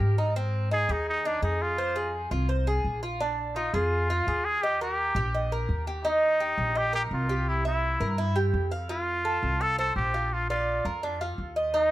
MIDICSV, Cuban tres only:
0, 0, Header, 1, 2, 480
1, 0, Start_track
1, 0, Key_signature, -3, "major"
1, 0, Tempo, 355661
1, 479, Time_signature, 4, 2, 24, 8
1, 16078, End_track
2, 0, Start_track
2, 0, Title_t, "Cuban tres"
2, 0, Program_c, 0, 25
2, 0, Note_on_c, 0, 67, 69
2, 226, Note_off_c, 0, 67, 0
2, 246, Note_on_c, 0, 63, 63
2, 476, Note_off_c, 0, 63, 0
2, 488, Note_on_c, 0, 60, 77
2, 950, Note_off_c, 0, 60, 0
2, 963, Note_on_c, 0, 63, 65
2, 1194, Note_off_c, 0, 63, 0
2, 1205, Note_on_c, 0, 68, 65
2, 1668, Note_off_c, 0, 68, 0
2, 1691, Note_on_c, 0, 63, 72
2, 1918, Note_off_c, 0, 63, 0
2, 1923, Note_on_c, 0, 68, 60
2, 2387, Note_off_c, 0, 68, 0
2, 2407, Note_on_c, 0, 72, 69
2, 2637, Note_off_c, 0, 72, 0
2, 2641, Note_on_c, 0, 68, 67
2, 3106, Note_off_c, 0, 68, 0
2, 3121, Note_on_c, 0, 65, 68
2, 3353, Note_off_c, 0, 65, 0
2, 3359, Note_on_c, 0, 72, 61
2, 3592, Note_off_c, 0, 72, 0
2, 3606, Note_on_c, 0, 68, 68
2, 4069, Note_off_c, 0, 68, 0
2, 4087, Note_on_c, 0, 65, 66
2, 4316, Note_off_c, 0, 65, 0
2, 4326, Note_on_c, 0, 62, 78
2, 4789, Note_off_c, 0, 62, 0
2, 4803, Note_on_c, 0, 65, 67
2, 5035, Note_off_c, 0, 65, 0
2, 5047, Note_on_c, 0, 68, 71
2, 5509, Note_off_c, 0, 68, 0
2, 5534, Note_on_c, 0, 65, 69
2, 5760, Note_off_c, 0, 65, 0
2, 5773, Note_on_c, 0, 68, 59
2, 6233, Note_off_c, 0, 68, 0
2, 6254, Note_on_c, 0, 75, 66
2, 6480, Note_off_c, 0, 75, 0
2, 6495, Note_on_c, 0, 70, 66
2, 6953, Note_off_c, 0, 70, 0
2, 6965, Note_on_c, 0, 67, 71
2, 7196, Note_off_c, 0, 67, 0
2, 7213, Note_on_c, 0, 75, 58
2, 7440, Note_off_c, 0, 75, 0
2, 7452, Note_on_c, 0, 70, 71
2, 7912, Note_off_c, 0, 70, 0
2, 7926, Note_on_c, 0, 67, 67
2, 8156, Note_off_c, 0, 67, 0
2, 8161, Note_on_c, 0, 63, 77
2, 8626, Note_off_c, 0, 63, 0
2, 8642, Note_on_c, 0, 67, 64
2, 9107, Note_off_c, 0, 67, 0
2, 9115, Note_on_c, 0, 75, 61
2, 9350, Note_off_c, 0, 75, 0
2, 9354, Note_on_c, 0, 70, 71
2, 9823, Note_off_c, 0, 70, 0
2, 9843, Note_on_c, 0, 67, 66
2, 10307, Note_off_c, 0, 67, 0
2, 10325, Note_on_c, 0, 76, 63
2, 10788, Note_off_c, 0, 76, 0
2, 10803, Note_on_c, 0, 70, 64
2, 11035, Note_off_c, 0, 70, 0
2, 11041, Note_on_c, 0, 64, 72
2, 11274, Note_off_c, 0, 64, 0
2, 11278, Note_on_c, 0, 67, 73
2, 11745, Note_off_c, 0, 67, 0
2, 11762, Note_on_c, 0, 77, 62
2, 11994, Note_off_c, 0, 77, 0
2, 12003, Note_on_c, 0, 65, 75
2, 12468, Note_off_c, 0, 65, 0
2, 12482, Note_on_c, 0, 69, 66
2, 12947, Note_off_c, 0, 69, 0
2, 12966, Note_on_c, 0, 77, 58
2, 13197, Note_off_c, 0, 77, 0
2, 13206, Note_on_c, 0, 72, 68
2, 13670, Note_off_c, 0, 72, 0
2, 13686, Note_on_c, 0, 65, 60
2, 14150, Note_off_c, 0, 65, 0
2, 14174, Note_on_c, 0, 74, 73
2, 14634, Note_off_c, 0, 74, 0
2, 14647, Note_on_c, 0, 70, 62
2, 14878, Note_off_c, 0, 70, 0
2, 14889, Note_on_c, 0, 62, 71
2, 15119, Note_off_c, 0, 62, 0
2, 15129, Note_on_c, 0, 65, 69
2, 15592, Note_off_c, 0, 65, 0
2, 15603, Note_on_c, 0, 75, 64
2, 15836, Note_off_c, 0, 75, 0
2, 15843, Note_on_c, 0, 63, 75
2, 16078, Note_off_c, 0, 63, 0
2, 16078, End_track
0, 0, End_of_file